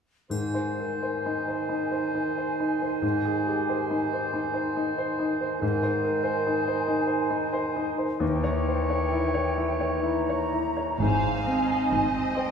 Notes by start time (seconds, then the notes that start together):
0.30 G#2 D#3 D#4 C5 G#5, triangle
0.54 C5
0.79 A#4
1.03 C5
1.26 D#4
1.48 C5
1.69 D#4
1.92 C5
2.15 D#4
2.38 C5
2.60 D#4
2.82 C5
3.02 G#2
3.25 G#4
3.47 G4
3.69 C5
3.91 D#4
4.13 C5
4.33 D#4
4.54 C5
4.77 D#4
4.98 C5
5.19 D#4
5.41 C5
5.60 G#2 D#3 D#4 C5 G#5
5.83 C5
6.04 A#4
6.23 C5
6.47 D#4
6.68 C5
6.88 D#4
7.07 C5
7.30 D#4
7.53 C5
7.76 D#4
7.98 C5
8.20 D#2 E3 C#5 G5
8.44 C#5
8.68 C5
8.90 C#5
9.12 E4
9.34 C#5
9.57 E4
9.80 C#5
10.02 E4 A#5
10.29 C#5
10.53 E4
10.77 C#5
10.99 G#1 G#2 C4 C5 F5 G#5
11.45 C4 D#4 D#5
11.91 G#1 G#2 C4 D#4 C5 D#5
12.36 D#4 C5 D#5 G5